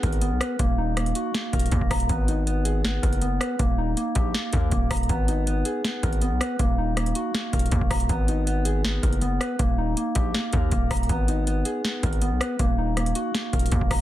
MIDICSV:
0, 0, Header, 1, 4, 480
1, 0, Start_track
1, 0, Key_signature, 5, "minor"
1, 0, Tempo, 375000
1, 760, Time_signature, 4, 2, 24, 8
1, 17933, End_track
2, 0, Start_track
2, 0, Title_t, "Clean electric guitar"
2, 0, Program_c, 0, 27
2, 0, Note_on_c, 0, 59, 87
2, 0, Note_on_c, 0, 63, 79
2, 0, Note_on_c, 0, 68, 85
2, 44, Note_on_c, 0, 70, 91
2, 263, Note_off_c, 0, 59, 0
2, 273, Note_off_c, 0, 63, 0
2, 278, Note_on_c, 0, 59, 85
2, 523, Note_on_c, 0, 71, 84
2, 758, Note_off_c, 0, 59, 0
2, 760, Note_off_c, 0, 68, 0
2, 762, Note_off_c, 0, 70, 0
2, 762, Note_off_c, 0, 71, 0
2, 763, Note_on_c, 0, 58, 94
2, 1002, Note_on_c, 0, 63, 81
2, 1224, Note_off_c, 0, 58, 0
2, 1240, Note_on_c, 0, 58, 84
2, 1482, Note_on_c, 0, 66, 79
2, 1705, Note_off_c, 0, 58, 0
2, 1721, Note_on_c, 0, 58, 81
2, 1959, Note_on_c, 0, 70, 93
2, 2183, Note_off_c, 0, 58, 0
2, 2198, Note_on_c, 0, 58, 82
2, 2201, Note_off_c, 0, 63, 0
2, 2441, Note_on_c, 0, 82, 89
2, 2680, Note_off_c, 0, 58, 0
2, 2680, Note_off_c, 0, 70, 0
2, 2681, Note_off_c, 0, 82, 0
2, 2682, Note_off_c, 0, 66, 0
2, 2686, Note_on_c, 0, 59, 88
2, 2924, Note_on_c, 0, 63, 78
2, 3144, Note_off_c, 0, 59, 0
2, 3159, Note_on_c, 0, 59, 81
2, 3392, Note_on_c, 0, 68, 83
2, 3628, Note_off_c, 0, 59, 0
2, 3643, Note_on_c, 0, 59, 93
2, 3876, Note_on_c, 0, 70, 89
2, 4106, Note_off_c, 0, 59, 0
2, 4117, Note_off_c, 0, 63, 0
2, 4122, Note_on_c, 0, 59, 87
2, 4359, Note_on_c, 0, 71, 93
2, 4593, Note_off_c, 0, 59, 0
2, 4597, Note_off_c, 0, 68, 0
2, 4598, Note_off_c, 0, 70, 0
2, 4598, Note_on_c, 0, 58, 91
2, 4600, Note_off_c, 0, 71, 0
2, 4842, Note_on_c, 0, 63, 88
2, 5066, Note_off_c, 0, 58, 0
2, 5082, Note_on_c, 0, 58, 84
2, 5315, Note_on_c, 0, 67, 79
2, 5545, Note_off_c, 0, 58, 0
2, 5560, Note_on_c, 0, 58, 93
2, 5799, Note_on_c, 0, 70, 86
2, 6023, Note_off_c, 0, 58, 0
2, 6039, Note_on_c, 0, 58, 87
2, 6042, Note_off_c, 0, 63, 0
2, 6281, Note_on_c, 0, 82, 88
2, 6515, Note_off_c, 0, 70, 0
2, 6518, Note_off_c, 0, 67, 0
2, 6520, Note_off_c, 0, 58, 0
2, 6520, Note_on_c, 0, 59, 95
2, 6521, Note_off_c, 0, 82, 0
2, 6764, Note_on_c, 0, 63, 80
2, 6990, Note_off_c, 0, 59, 0
2, 7005, Note_on_c, 0, 59, 87
2, 7240, Note_on_c, 0, 68, 83
2, 7466, Note_off_c, 0, 59, 0
2, 7482, Note_on_c, 0, 59, 91
2, 7723, Note_on_c, 0, 70, 91
2, 7945, Note_off_c, 0, 59, 0
2, 7956, Note_off_c, 0, 63, 0
2, 7961, Note_on_c, 0, 59, 87
2, 8205, Note_on_c, 0, 71, 85
2, 8438, Note_off_c, 0, 59, 0
2, 8441, Note_off_c, 0, 68, 0
2, 8442, Note_off_c, 0, 70, 0
2, 8443, Note_off_c, 0, 71, 0
2, 8443, Note_on_c, 0, 58, 97
2, 8683, Note_on_c, 0, 63, 82
2, 8904, Note_off_c, 0, 58, 0
2, 8919, Note_on_c, 0, 58, 86
2, 9162, Note_on_c, 0, 66, 81
2, 9385, Note_off_c, 0, 58, 0
2, 9400, Note_on_c, 0, 58, 88
2, 9639, Note_on_c, 0, 70, 93
2, 9862, Note_off_c, 0, 58, 0
2, 9877, Note_on_c, 0, 58, 81
2, 9882, Note_off_c, 0, 63, 0
2, 10120, Note_on_c, 0, 82, 88
2, 10359, Note_off_c, 0, 58, 0
2, 10360, Note_off_c, 0, 70, 0
2, 10360, Note_off_c, 0, 82, 0
2, 10361, Note_off_c, 0, 66, 0
2, 10365, Note_on_c, 0, 59, 90
2, 10603, Note_on_c, 0, 63, 80
2, 10824, Note_off_c, 0, 59, 0
2, 10839, Note_on_c, 0, 59, 87
2, 11073, Note_on_c, 0, 68, 81
2, 11309, Note_off_c, 0, 59, 0
2, 11324, Note_on_c, 0, 59, 94
2, 11556, Note_on_c, 0, 70, 87
2, 11786, Note_off_c, 0, 59, 0
2, 11796, Note_off_c, 0, 63, 0
2, 11802, Note_on_c, 0, 59, 89
2, 12039, Note_on_c, 0, 71, 95
2, 12272, Note_off_c, 0, 59, 0
2, 12277, Note_off_c, 0, 68, 0
2, 12277, Note_on_c, 0, 58, 92
2, 12279, Note_off_c, 0, 70, 0
2, 12280, Note_off_c, 0, 71, 0
2, 12522, Note_on_c, 0, 63, 87
2, 12746, Note_off_c, 0, 58, 0
2, 12761, Note_on_c, 0, 58, 84
2, 12995, Note_on_c, 0, 67, 82
2, 13223, Note_off_c, 0, 58, 0
2, 13238, Note_on_c, 0, 58, 99
2, 13479, Note_on_c, 0, 70, 87
2, 13702, Note_off_c, 0, 58, 0
2, 13718, Note_on_c, 0, 58, 85
2, 13721, Note_off_c, 0, 63, 0
2, 13960, Note_on_c, 0, 82, 86
2, 14194, Note_off_c, 0, 70, 0
2, 14198, Note_off_c, 0, 67, 0
2, 14199, Note_off_c, 0, 58, 0
2, 14199, Note_on_c, 0, 59, 92
2, 14200, Note_off_c, 0, 82, 0
2, 14443, Note_on_c, 0, 63, 83
2, 14670, Note_off_c, 0, 59, 0
2, 14685, Note_on_c, 0, 59, 86
2, 14919, Note_on_c, 0, 68, 84
2, 15145, Note_off_c, 0, 59, 0
2, 15160, Note_on_c, 0, 59, 87
2, 15403, Note_on_c, 0, 70, 92
2, 15624, Note_off_c, 0, 59, 0
2, 15634, Note_off_c, 0, 63, 0
2, 15639, Note_on_c, 0, 59, 85
2, 15883, Note_on_c, 0, 71, 83
2, 16119, Note_off_c, 0, 59, 0
2, 16120, Note_off_c, 0, 68, 0
2, 16122, Note_off_c, 0, 70, 0
2, 16122, Note_off_c, 0, 71, 0
2, 16124, Note_on_c, 0, 58, 95
2, 16363, Note_on_c, 0, 63, 83
2, 16585, Note_off_c, 0, 58, 0
2, 16600, Note_on_c, 0, 58, 85
2, 16841, Note_on_c, 0, 66, 83
2, 17065, Note_off_c, 0, 58, 0
2, 17081, Note_on_c, 0, 58, 87
2, 17318, Note_on_c, 0, 70, 94
2, 17543, Note_off_c, 0, 58, 0
2, 17558, Note_on_c, 0, 58, 85
2, 17562, Note_off_c, 0, 63, 0
2, 17802, Note_on_c, 0, 82, 88
2, 17933, Note_off_c, 0, 58, 0
2, 17933, Note_off_c, 0, 66, 0
2, 17933, Note_off_c, 0, 70, 0
2, 17933, Note_off_c, 0, 82, 0
2, 17933, End_track
3, 0, Start_track
3, 0, Title_t, "808-style bass"
3, 0, Program_c, 1, 38
3, 41, Note_on_c, 1, 32, 105
3, 401, Note_on_c, 1, 35, 93
3, 420, Note_off_c, 1, 32, 0
3, 515, Note_off_c, 1, 35, 0
3, 761, Note_on_c, 1, 27, 114
3, 1452, Note_off_c, 1, 27, 0
3, 1961, Note_on_c, 1, 27, 102
3, 2192, Note_off_c, 1, 27, 0
3, 2201, Note_on_c, 1, 39, 105
3, 2313, Note_off_c, 1, 39, 0
3, 2320, Note_on_c, 1, 27, 96
3, 2436, Note_off_c, 1, 27, 0
3, 2441, Note_on_c, 1, 27, 102
3, 2671, Note_off_c, 1, 27, 0
3, 2681, Note_on_c, 1, 32, 105
3, 3833, Note_off_c, 1, 32, 0
3, 3881, Note_on_c, 1, 30, 101
3, 4342, Note_off_c, 1, 30, 0
3, 4601, Note_on_c, 1, 27, 112
3, 5062, Note_off_c, 1, 27, 0
3, 5320, Note_on_c, 1, 34, 105
3, 5551, Note_off_c, 1, 34, 0
3, 5801, Note_on_c, 1, 39, 105
3, 6031, Note_off_c, 1, 39, 0
3, 6040, Note_on_c, 1, 27, 107
3, 6271, Note_off_c, 1, 27, 0
3, 6281, Note_on_c, 1, 27, 106
3, 6511, Note_off_c, 1, 27, 0
3, 6521, Note_on_c, 1, 32, 107
3, 7212, Note_off_c, 1, 32, 0
3, 7721, Note_on_c, 1, 32, 101
3, 8080, Note_on_c, 1, 35, 100
3, 8099, Note_off_c, 1, 32, 0
3, 8194, Note_off_c, 1, 35, 0
3, 8441, Note_on_c, 1, 27, 110
3, 9132, Note_off_c, 1, 27, 0
3, 9641, Note_on_c, 1, 27, 99
3, 9871, Note_off_c, 1, 27, 0
3, 9880, Note_on_c, 1, 39, 110
3, 9992, Note_off_c, 1, 39, 0
3, 10000, Note_on_c, 1, 27, 97
3, 10113, Note_off_c, 1, 27, 0
3, 10120, Note_on_c, 1, 27, 109
3, 10351, Note_off_c, 1, 27, 0
3, 10361, Note_on_c, 1, 32, 109
3, 11513, Note_off_c, 1, 32, 0
3, 11562, Note_on_c, 1, 30, 100
3, 12022, Note_off_c, 1, 30, 0
3, 12281, Note_on_c, 1, 27, 113
3, 12742, Note_off_c, 1, 27, 0
3, 13000, Note_on_c, 1, 34, 105
3, 13231, Note_off_c, 1, 34, 0
3, 13481, Note_on_c, 1, 39, 101
3, 13712, Note_off_c, 1, 39, 0
3, 13721, Note_on_c, 1, 27, 107
3, 13951, Note_off_c, 1, 27, 0
3, 13961, Note_on_c, 1, 27, 110
3, 14191, Note_off_c, 1, 27, 0
3, 14201, Note_on_c, 1, 32, 107
3, 14892, Note_off_c, 1, 32, 0
3, 15402, Note_on_c, 1, 32, 106
3, 15761, Note_on_c, 1, 35, 95
3, 15780, Note_off_c, 1, 32, 0
3, 15875, Note_off_c, 1, 35, 0
3, 16121, Note_on_c, 1, 27, 112
3, 16812, Note_off_c, 1, 27, 0
3, 17321, Note_on_c, 1, 27, 105
3, 17552, Note_off_c, 1, 27, 0
3, 17561, Note_on_c, 1, 39, 105
3, 17673, Note_off_c, 1, 39, 0
3, 17681, Note_on_c, 1, 27, 100
3, 17793, Note_off_c, 1, 27, 0
3, 17801, Note_on_c, 1, 27, 107
3, 17933, Note_off_c, 1, 27, 0
3, 17933, End_track
4, 0, Start_track
4, 0, Title_t, "Drums"
4, 40, Note_on_c, 9, 42, 78
4, 41, Note_on_c, 9, 36, 97
4, 161, Note_off_c, 9, 42, 0
4, 161, Note_on_c, 9, 42, 43
4, 169, Note_off_c, 9, 36, 0
4, 275, Note_off_c, 9, 42, 0
4, 275, Note_on_c, 9, 42, 79
4, 403, Note_off_c, 9, 42, 0
4, 521, Note_on_c, 9, 37, 91
4, 526, Note_on_c, 9, 42, 69
4, 649, Note_off_c, 9, 37, 0
4, 654, Note_off_c, 9, 42, 0
4, 759, Note_on_c, 9, 42, 78
4, 761, Note_on_c, 9, 36, 106
4, 887, Note_off_c, 9, 42, 0
4, 889, Note_off_c, 9, 36, 0
4, 1240, Note_on_c, 9, 37, 65
4, 1241, Note_on_c, 9, 42, 69
4, 1360, Note_off_c, 9, 42, 0
4, 1360, Note_on_c, 9, 42, 41
4, 1368, Note_off_c, 9, 37, 0
4, 1475, Note_off_c, 9, 42, 0
4, 1475, Note_on_c, 9, 42, 86
4, 1603, Note_off_c, 9, 42, 0
4, 1722, Note_on_c, 9, 38, 124
4, 1724, Note_on_c, 9, 42, 83
4, 1850, Note_off_c, 9, 38, 0
4, 1852, Note_off_c, 9, 42, 0
4, 1961, Note_on_c, 9, 36, 95
4, 1961, Note_on_c, 9, 42, 65
4, 2041, Note_off_c, 9, 42, 0
4, 2041, Note_on_c, 9, 42, 66
4, 2089, Note_off_c, 9, 36, 0
4, 2121, Note_off_c, 9, 42, 0
4, 2121, Note_on_c, 9, 42, 62
4, 2195, Note_off_c, 9, 42, 0
4, 2195, Note_on_c, 9, 42, 76
4, 2201, Note_on_c, 9, 36, 99
4, 2321, Note_off_c, 9, 36, 0
4, 2321, Note_on_c, 9, 36, 96
4, 2323, Note_off_c, 9, 42, 0
4, 2441, Note_off_c, 9, 36, 0
4, 2441, Note_on_c, 9, 36, 99
4, 2441, Note_on_c, 9, 42, 58
4, 2442, Note_on_c, 9, 37, 91
4, 2447, Note_on_c, 9, 46, 74
4, 2561, Note_off_c, 9, 42, 0
4, 2561, Note_on_c, 9, 42, 58
4, 2569, Note_off_c, 9, 36, 0
4, 2570, Note_off_c, 9, 37, 0
4, 2575, Note_off_c, 9, 46, 0
4, 2680, Note_off_c, 9, 42, 0
4, 2680, Note_on_c, 9, 42, 79
4, 2681, Note_on_c, 9, 36, 105
4, 2808, Note_off_c, 9, 42, 0
4, 2809, Note_off_c, 9, 36, 0
4, 2920, Note_on_c, 9, 42, 81
4, 3048, Note_off_c, 9, 42, 0
4, 3162, Note_on_c, 9, 42, 73
4, 3290, Note_off_c, 9, 42, 0
4, 3395, Note_on_c, 9, 42, 90
4, 3523, Note_off_c, 9, 42, 0
4, 3642, Note_on_c, 9, 38, 119
4, 3644, Note_on_c, 9, 42, 82
4, 3770, Note_off_c, 9, 38, 0
4, 3772, Note_off_c, 9, 42, 0
4, 3881, Note_on_c, 9, 36, 96
4, 3881, Note_on_c, 9, 42, 81
4, 4001, Note_off_c, 9, 42, 0
4, 4001, Note_on_c, 9, 42, 44
4, 4009, Note_off_c, 9, 36, 0
4, 4116, Note_off_c, 9, 42, 0
4, 4116, Note_on_c, 9, 42, 79
4, 4244, Note_off_c, 9, 42, 0
4, 4361, Note_on_c, 9, 37, 89
4, 4367, Note_on_c, 9, 42, 67
4, 4489, Note_off_c, 9, 37, 0
4, 4495, Note_off_c, 9, 42, 0
4, 4600, Note_on_c, 9, 42, 77
4, 4601, Note_on_c, 9, 36, 104
4, 4728, Note_off_c, 9, 42, 0
4, 4729, Note_off_c, 9, 36, 0
4, 5082, Note_on_c, 9, 42, 67
4, 5210, Note_off_c, 9, 42, 0
4, 5315, Note_on_c, 9, 42, 89
4, 5320, Note_on_c, 9, 36, 101
4, 5443, Note_off_c, 9, 42, 0
4, 5448, Note_off_c, 9, 36, 0
4, 5561, Note_on_c, 9, 38, 124
4, 5564, Note_on_c, 9, 42, 83
4, 5689, Note_off_c, 9, 38, 0
4, 5692, Note_off_c, 9, 42, 0
4, 5793, Note_on_c, 9, 42, 78
4, 5801, Note_on_c, 9, 36, 93
4, 5921, Note_off_c, 9, 42, 0
4, 5929, Note_off_c, 9, 36, 0
4, 6035, Note_on_c, 9, 42, 77
4, 6040, Note_on_c, 9, 36, 98
4, 6163, Note_off_c, 9, 42, 0
4, 6168, Note_off_c, 9, 36, 0
4, 6280, Note_on_c, 9, 42, 59
4, 6281, Note_on_c, 9, 36, 98
4, 6281, Note_on_c, 9, 37, 93
4, 6286, Note_on_c, 9, 46, 76
4, 6361, Note_off_c, 9, 42, 0
4, 6361, Note_on_c, 9, 42, 59
4, 6409, Note_off_c, 9, 36, 0
4, 6409, Note_off_c, 9, 37, 0
4, 6414, Note_off_c, 9, 46, 0
4, 6441, Note_off_c, 9, 42, 0
4, 6441, Note_on_c, 9, 42, 58
4, 6520, Note_off_c, 9, 42, 0
4, 6520, Note_on_c, 9, 42, 82
4, 6521, Note_on_c, 9, 36, 103
4, 6648, Note_off_c, 9, 42, 0
4, 6649, Note_off_c, 9, 36, 0
4, 6760, Note_on_c, 9, 42, 81
4, 6888, Note_off_c, 9, 42, 0
4, 7002, Note_on_c, 9, 42, 71
4, 7130, Note_off_c, 9, 42, 0
4, 7235, Note_on_c, 9, 42, 88
4, 7363, Note_off_c, 9, 42, 0
4, 7482, Note_on_c, 9, 38, 119
4, 7484, Note_on_c, 9, 42, 85
4, 7610, Note_off_c, 9, 38, 0
4, 7612, Note_off_c, 9, 42, 0
4, 7721, Note_on_c, 9, 36, 98
4, 7721, Note_on_c, 9, 42, 80
4, 7841, Note_off_c, 9, 42, 0
4, 7841, Note_on_c, 9, 42, 43
4, 7849, Note_off_c, 9, 36, 0
4, 7955, Note_off_c, 9, 42, 0
4, 7955, Note_on_c, 9, 42, 78
4, 8083, Note_off_c, 9, 42, 0
4, 8201, Note_on_c, 9, 37, 92
4, 8207, Note_on_c, 9, 42, 69
4, 8329, Note_off_c, 9, 37, 0
4, 8335, Note_off_c, 9, 42, 0
4, 8440, Note_on_c, 9, 42, 78
4, 8441, Note_on_c, 9, 36, 107
4, 8568, Note_off_c, 9, 42, 0
4, 8569, Note_off_c, 9, 36, 0
4, 8921, Note_on_c, 9, 37, 64
4, 8921, Note_on_c, 9, 42, 69
4, 9041, Note_off_c, 9, 42, 0
4, 9041, Note_on_c, 9, 42, 41
4, 9049, Note_off_c, 9, 37, 0
4, 9155, Note_off_c, 9, 42, 0
4, 9155, Note_on_c, 9, 42, 88
4, 9283, Note_off_c, 9, 42, 0
4, 9402, Note_on_c, 9, 38, 123
4, 9404, Note_on_c, 9, 42, 83
4, 9530, Note_off_c, 9, 38, 0
4, 9532, Note_off_c, 9, 42, 0
4, 9640, Note_on_c, 9, 42, 66
4, 9641, Note_on_c, 9, 36, 95
4, 9720, Note_off_c, 9, 42, 0
4, 9720, Note_on_c, 9, 42, 65
4, 9769, Note_off_c, 9, 36, 0
4, 9800, Note_off_c, 9, 42, 0
4, 9800, Note_on_c, 9, 42, 60
4, 9875, Note_off_c, 9, 42, 0
4, 9875, Note_on_c, 9, 42, 77
4, 9880, Note_on_c, 9, 36, 97
4, 10000, Note_off_c, 9, 36, 0
4, 10000, Note_on_c, 9, 36, 101
4, 10003, Note_off_c, 9, 42, 0
4, 10120, Note_off_c, 9, 36, 0
4, 10120, Note_on_c, 9, 36, 100
4, 10120, Note_on_c, 9, 37, 92
4, 10120, Note_on_c, 9, 42, 60
4, 10126, Note_on_c, 9, 46, 75
4, 10241, Note_off_c, 9, 42, 0
4, 10241, Note_on_c, 9, 42, 58
4, 10248, Note_off_c, 9, 36, 0
4, 10248, Note_off_c, 9, 37, 0
4, 10254, Note_off_c, 9, 46, 0
4, 10360, Note_off_c, 9, 42, 0
4, 10360, Note_on_c, 9, 42, 77
4, 10361, Note_on_c, 9, 36, 101
4, 10488, Note_off_c, 9, 42, 0
4, 10489, Note_off_c, 9, 36, 0
4, 10600, Note_on_c, 9, 42, 82
4, 10728, Note_off_c, 9, 42, 0
4, 10842, Note_on_c, 9, 42, 72
4, 10970, Note_off_c, 9, 42, 0
4, 11075, Note_on_c, 9, 42, 91
4, 11203, Note_off_c, 9, 42, 0
4, 11322, Note_on_c, 9, 38, 125
4, 11324, Note_on_c, 9, 42, 88
4, 11450, Note_off_c, 9, 38, 0
4, 11452, Note_off_c, 9, 42, 0
4, 11561, Note_on_c, 9, 36, 96
4, 11561, Note_on_c, 9, 42, 80
4, 11681, Note_off_c, 9, 42, 0
4, 11681, Note_on_c, 9, 42, 44
4, 11689, Note_off_c, 9, 36, 0
4, 11795, Note_off_c, 9, 42, 0
4, 11795, Note_on_c, 9, 42, 77
4, 11923, Note_off_c, 9, 42, 0
4, 12041, Note_on_c, 9, 37, 89
4, 12047, Note_on_c, 9, 42, 68
4, 12169, Note_off_c, 9, 37, 0
4, 12175, Note_off_c, 9, 42, 0
4, 12279, Note_on_c, 9, 42, 80
4, 12281, Note_on_c, 9, 36, 104
4, 12407, Note_off_c, 9, 42, 0
4, 12409, Note_off_c, 9, 36, 0
4, 12761, Note_on_c, 9, 42, 69
4, 12889, Note_off_c, 9, 42, 0
4, 12995, Note_on_c, 9, 42, 91
4, 13000, Note_on_c, 9, 36, 98
4, 13123, Note_off_c, 9, 42, 0
4, 13128, Note_off_c, 9, 36, 0
4, 13241, Note_on_c, 9, 38, 124
4, 13243, Note_on_c, 9, 42, 86
4, 13369, Note_off_c, 9, 38, 0
4, 13371, Note_off_c, 9, 42, 0
4, 13473, Note_on_c, 9, 42, 78
4, 13481, Note_on_c, 9, 36, 96
4, 13601, Note_off_c, 9, 42, 0
4, 13609, Note_off_c, 9, 36, 0
4, 13715, Note_on_c, 9, 42, 78
4, 13721, Note_on_c, 9, 36, 100
4, 13843, Note_off_c, 9, 42, 0
4, 13849, Note_off_c, 9, 36, 0
4, 13961, Note_on_c, 9, 36, 101
4, 13961, Note_on_c, 9, 37, 89
4, 13961, Note_on_c, 9, 42, 59
4, 13967, Note_on_c, 9, 46, 74
4, 14041, Note_off_c, 9, 42, 0
4, 14041, Note_on_c, 9, 42, 59
4, 14089, Note_off_c, 9, 36, 0
4, 14089, Note_off_c, 9, 37, 0
4, 14095, Note_off_c, 9, 46, 0
4, 14120, Note_off_c, 9, 42, 0
4, 14120, Note_on_c, 9, 42, 56
4, 14200, Note_off_c, 9, 42, 0
4, 14200, Note_on_c, 9, 42, 79
4, 14201, Note_on_c, 9, 36, 106
4, 14328, Note_off_c, 9, 42, 0
4, 14329, Note_off_c, 9, 36, 0
4, 14441, Note_on_c, 9, 42, 79
4, 14569, Note_off_c, 9, 42, 0
4, 14682, Note_on_c, 9, 42, 70
4, 14810, Note_off_c, 9, 42, 0
4, 14916, Note_on_c, 9, 42, 89
4, 15044, Note_off_c, 9, 42, 0
4, 15162, Note_on_c, 9, 38, 122
4, 15164, Note_on_c, 9, 42, 83
4, 15290, Note_off_c, 9, 38, 0
4, 15292, Note_off_c, 9, 42, 0
4, 15401, Note_on_c, 9, 42, 78
4, 15402, Note_on_c, 9, 36, 96
4, 15521, Note_off_c, 9, 42, 0
4, 15521, Note_on_c, 9, 42, 45
4, 15530, Note_off_c, 9, 36, 0
4, 15635, Note_off_c, 9, 42, 0
4, 15635, Note_on_c, 9, 42, 79
4, 15763, Note_off_c, 9, 42, 0
4, 15881, Note_on_c, 9, 37, 90
4, 15887, Note_on_c, 9, 42, 69
4, 16009, Note_off_c, 9, 37, 0
4, 16015, Note_off_c, 9, 42, 0
4, 16120, Note_on_c, 9, 42, 81
4, 16121, Note_on_c, 9, 36, 102
4, 16248, Note_off_c, 9, 42, 0
4, 16249, Note_off_c, 9, 36, 0
4, 16601, Note_on_c, 9, 37, 61
4, 16601, Note_on_c, 9, 42, 70
4, 16721, Note_off_c, 9, 42, 0
4, 16721, Note_on_c, 9, 42, 42
4, 16729, Note_off_c, 9, 37, 0
4, 16836, Note_off_c, 9, 42, 0
4, 16836, Note_on_c, 9, 42, 90
4, 16964, Note_off_c, 9, 42, 0
4, 17082, Note_on_c, 9, 38, 124
4, 17084, Note_on_c, 9, 42, 84
4, 17210, Note_off_c, 9, 38, 0
4, 17212, Note_off_c, 9, 42, 0
4, 17321, Note_on_c, 9, 36, 98
4, 17321, Note_on_c, 9, 42, 69
4, 17401, Note_off_c, 9, 42, 0
4, 17401, Note_on_c, 9, 42, 66
4, 17449, Note_off_c, 9, 36, 0
4, 17481, Note_off_c, 9, 42, 0
4, 17481, Note_on_c, 9, 42, 64
4, 17555, Note_off_c, 9, 42, 0
4, 17555, Note_on_c, 9, 42, 79
4, 17561, Note_on_c, 9, 36, 95
4, 17681, Note_off_c, 9, 36, 0
4, 17681, Note_on_c, 9, 36, 98
4, 17683, Note_off_c, 9, 42, 0
4, 17801, Note_off_c, 9, 36, 0
4, 17801, Note_on_c, 9, 36, 101
4, 17801, Note_on_c, 9, 37, 93
4, 17801, Note_on_c, 9, 42, 59
4, 17807, Note_on_c, 9, 46, 73
4, 17929, Note_off_c, 9, 36, 0
4, 17929, Note_off_c, 9, 37, 0
4, 17929, Note_off_c, 9, 42, 0
4, 17933, Note_off_c, 9, 46, 0
4, 17933, End_track
0, 0, End_of_file